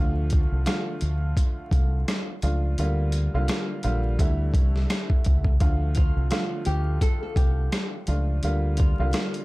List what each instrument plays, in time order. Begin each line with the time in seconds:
Already playing: fingered electric bass D2, upright piano D3 F3 A3 F4
0.30 kick, closed hi-hat
0.52 fingered electric bass C2
0.66 upright piano D3 F3 A3 F4, cross-stick, snare, closed hi-hat
1.01 fingered electric bass D2, closed hi-hat
1.37 kick, closed hi-hat
1.71 fingered electric bass C2, kick, closed hi-hat
2.08 cross-stick, snare, closed hi-hat
2.42 fingered electric bass C#2, upright piano F3 A3 D4 F4, closed hi-hat
2.78 fingered electric bass D2, upright piano D3 G3 A#3 F4, closed hi-hat
3.12 closed hi-hat
3.34 fingered electric bass C2, upright piano D3 G3 A#3 F4
3.48 cross-stick, snare, closed hi-hat
3.83 fingered electric bass A#1, upright piano D3 G3 A#3 F4, closed hi-hat
4.19 fingered electric bass D2, upright piano D3 G3 A3 E4, kick, closed hi-hat
4.54 fingered electric bass C2, kick, closed hi-hat
4.76 snare
4.90 cross-stick, snare, closed hi-hat
5.10 kick
5.24 fingered electric bass C#2, kick, closed hi-hat
5.44 kick
5.60 fingered electric bass D2, upright piano D3 F3 A3 F4, kick, closed hi-hat
5.95 nylon-string guitar F4, kick, closed hi-hat
6.16 fingered electric bass C2
6.31 upright piano D3 F3 A3 F4, cross-stick, snare, closed hi-hat
6.65 fingered electric bass D2, nylon-string guitar G4, closed hi-hat
7.01 nylon-string guitar A4, kick, closed hi-hat
7.23 nylon-string guitar A4
7.36 fingered electric bass C2, nylon-string guitar G4, kick, closed hi-hat
7.72 cross-stick, snare, closed hi-hat
8.07 fingered electric bass C#2, upright piano F3 A3 D4 F4, closed hi-hat
8.43 fingered electric bass D2, upright piano D3 G3 A#3 F4, closed hi-hat
8.77 nylon-string guitar F4, kick, closed hi-hat
8.99 fingered electric bass C2, upright piano D3 G3 A#3 F4
9.13 cross-stick, snare, closed hi-hat
9.34 closed hi-hat